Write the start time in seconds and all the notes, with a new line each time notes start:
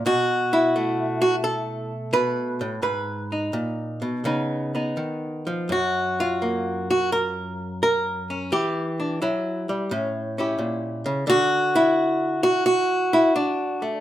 0.06 B2 F#4
0.53 E4
0.76 A3
1.22 F#4
1.44 A4
2.13 B2 B4
2.61 A2
2.82 G#2 B4
3.32 D#4
3.53 A#2
4.02 B2
4.25 C#3 B3 D#4
4.75 B3 D#4
4.97 D#3
5.47 F3
5.69 F#2 F#4
6.20 F4
6.42 A#3
6.91 F#4
7.12 A#4
7.83 A#4
8.30 C#4
8.52 E3 G4
9.00 D4
9.22 F#3 E4
9.69 G3
9.91 A2 C#4
10.38 C#4 E4 G4
10.59 A#2
11.06 C#3
11.27 D3 F#4
11.75 E4
12.43 F#4
12.66 F#4
13.13 E4
13.36 D4
13.82 A3